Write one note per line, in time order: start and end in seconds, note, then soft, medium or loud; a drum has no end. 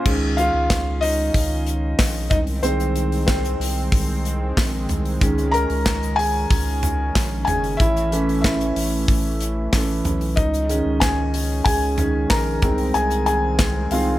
0.05 0.50 C#2 loud
0.05 7.75 D#3 medium
0.05 0.48 D#3 medium
0.05 7.75 G#3 medium
0.05 0.49 G#3 medium
0.05 2.29 C#4 medium
0.05 0.49 C#4 medium
0.05 kick loud
0.05 crash medium
0.37 0.99 F4 medium
0.37 1.04 F5 loud
0.37 hi-hat pedal medium
0.37 open hi-hat medium
0.54 0.69 C#2 medium
0.70 1.31 C#2 loud
0.70 kick loud
0.70 snare loud
0.70 clap medium
0.70 hi-hat pedal medium
0.70 open hi-hat medium
1.01 2.28 D#4 medium
1.01 2.28 D#5 loud
1.01 hi-hat pedal medium
1.01 open hi-hat medium
1.34 1.95 C#2 loud
1.34 kick loud
1.34 hi-hat pedal medium
1.34 open hi-hat medium
1.67 hi-hat pedal medium
1.67 open hi-hat medium
1.99 2.29 A#1 medium
1.99 kick loud
1.99 snare loud
1.99 clap medium
1.99 hi-hat pedal medium
1.99 open hi-hat loud
2.30 2.61 C2 medium
2.30 5.18 C4 medium
2.30 2.39 D#4 medium
2.30 2.37 D#5 medium
2.30 kick loud
2.30 floor tom medium
2.30 hi-hat pedal medium
2.30 open hi-hat medium
2.47 open hi-hat medium
2.63 3.56 C2 loud
2.63 3.56 D#3 medium
2.63 3.56 G#3 medium
2.63 3.24 C4 medium
2.63 3.25 C5 medium
2.63 hi-hat pedal medium
2.63 open hi-hat medium
2.80 hi-hat pedal medium
2.96 hi-hat pedal medium
2.96 open hi-hat medium
3.12 open hi-hat soft
3.26 4.53 C4 medium
3.26 4.52 C5 medium
3.26 kick loud
3.26 snare loud
3.26 clap medium
3.26 hi-hat pedal medium
3.26 open hi-hat medium
3.45 hi-hat pedal medium
3.60 3.90 C2 loud
3.60 hi-hat pedal medium
3.60 open hi-hat medium
3.92 4.53 C2 loud
3.92 kick loud
3.92 hi-hat pedal medium
3.92 open hi-hat medium
4.25 hi-hat pedal medium
4.25 open hi-hat medium
4.57 4.87 A#1 loud
4.57 kick loud
4.57 snare loud
4.57 clap medium
4.57 hi-hat pedal medium
4.57 open hi-hat loud
4.88 5.19 C2 medium
4.88 floor tom medium
4.88 hi-hat pedal medium
4.88 open hi-hat medium
5.05 open hi-hat soft
5.21 5.66 C#2 loud
5.21 7.75 D#3 medium
5.21 7.75 G#3 soft
5.21 10.33 C#4 medium
5.21 7.75 C#4 medium
5.21 kick loud
5.21 hi-hat pedal medium
5.21 open hi-hat medium
5.38 hi-hat pedal medium
5.51 6.14 A#4 medium
5.51 6.19 A#5 loud
5.51 hi-hat pedal medium
5.51 open hi-hat medium
5.70 5.85 C#2 medium
5.70 open hi-hat soft
5.86 6.46 C#2 medium
5.86 kick loud
5.86 snare loud
5.86 clap medium
5.86 hi-hat pedal medium
5.86 open hi-hat medium
6.03 hi-hat pedal medium
6.16 7.43 G#4 medium
6.16 7.43 G#5 loud
6.16 hi-hat pedal medium
6.16 open hi-hat medium
6.50 7.11 C#2 loud
6.50 kick loud
6.50 hi-hat pedal medium
6.50 open hi-hat medium
6.83 floor tom medium
6.83 hi-hat pedal medium
6.83 open hi-hat medium
7.15 7.45 A#1 loud
7.15 kick loud
7.15 snare loud
7.15 clap medium
7.15 hi-hat pedal medium
7.15 open hi-hat medium
7.45 7.77 F#1 medium
7.45 7.79 G#5 loud
7.45 floor tom medium
7.45 hi-hat pedal medium
7.45 open hi-hat medium
7.49 7.78 G#4 medium
7.64 open hi-hat medium
7.77 8.72 A1 loud
7.77 10.34 E3 medium
7.77 10.35 A3 medium
7.77 8.40 E5 medium
7.77 kick loud
7.77 hi-hat pedal medium
7.77 open hi-hat medium
7.81 8.41 E4 medium
7.96 hi-hat pedal medium
8.12 9.71 E3 medium
8.12 9.71 A3 soft
8.12 9.72 C#4 medium
8.12 hi-hat pedal medium
8.12 open hi-hat medium
8.29 open hi-hat soft
8.41 9.69 E4 medium
8.41 9.67 E5 medium
8.41 kick loud
8.41 snare loud
8.41 clap medium
8.41 hi-hat pedal medium
8.41 open hi-hat medium
8.61 hi-hat pedal medium
8.76 9.06 A1 medium
8.76 hi-hat pedal medium
8.76 open hi-hat medium
9.08 9.69 A1 loud
9.08 kick loud
9.08 hi-hat pedal medium
9.08 open hi-hat medium
9.41 hi-hat pedal medium
9.41 open hi-hat medium
9.73 10.03 A1 medium
9.73 10.02 E3 soft
9.73 10.02 A3 soft
9.73 10.02 C#4 medium
9.73 kick loud
9.73 snare loud
9.73 clap medium
9.73 hi-hat pedal medium
9.73 open hi-hat loud
10.05 10.39 B1 medium
10.05 floor tom medium
10.05 hi-hat pedal medium
10.05 open hi-hat medium
10.21 open hi-hat medium
10.36 10.82 C#2 loud
10.36 14.19 D#3 medium
10.36 14.19 G#3 medium
10.36 12.60 C#4 medium
10.36 10.98 D#4 medium
10.36 11.03 D#5 medium
10.36 kick loud
10.36 hi-hat pedal medium
10.36 open hi-hat medium
10.53 hi-hat pedal medium
10.69 11.12 D#3 medium
10.69 11.12 G#3 medium
10.69 11.13 C#4 medium
10.69 hi-hat pedal medium
10.69 open hi-hat medium
10.86 11.00 C#2 medium
11.00 11.62 C#2 loud
11.00 11.62 G#4 medium
11.00 11.63 G#5 medium
11.00 kick loud
11.00 snare loud
11.00 clap medium
11.00 hi-hat pedal medium
11.00 open hi-hat medium
11.34 hi-hat pedal medium
11.34 open hi-hat medium
11.64 12.26 C#2 loud
11.64 12.27 G#4 medium
11.64 12.32 G#5 loud
11.64 kick loud
11.64 hi-hat pedal medium
11.64 open hi-hat medium
11.98 12.27 D#3 medium
11.98 12.27 G#3 soft
11.98 12.27 C#4 medium
11.98 floor tom medium
11.98 hi-hat pedal medium
11.98 open hi-hat medium
12.30 12.60 A#1 loud
12.30 12.91 A#4 medium
12.30 12.97 A#5 loud
12.30 kick loud
12.30 snare loud
12.30 clap medium
12.30 hi-hat pedal medium
12.30 open hi-hat loud
12.62 12.92 C2 loud
12.62 13.55 D#3 medium
12.62 13.55 G#3 medium
12.62 14.19 C4 medium
12.62 13.56 C4 medium
12.62 kick loud
12.62 floor tom medium
12.62 hi-hat pedal medium
12.62 open hi-hat medium
12.78 open hi-hat medium
12.94 13.87 C2 loud
12.94 13.25 G#4 medium
12.94 13.25 G#5 loud
12.94 hi-hat pedal medium
12.94 open hi-hat medium
13.10 hi-hat pedal medium
13.26 13.88 G#4 medium
13.26 13.93 G#5 loud
13.26 hi-hat pedal medium
13.26 open hi-hat medium
13.59 kick loud
13.59 snare loud
13.59 clap medium
13.59 hi-hat pedal medium
13.59 open hi-hat medium
13.91 14.19 C2 medium
13.91 14.19 D#3 medium
13.91 14.19 G#3 soft
13.91 14.19 C4 medium
13.91 14.00 F4 medium
13.91 13.99 F5 medium
13.91 hi-hat pedal medium
13.91 open hi-hat medium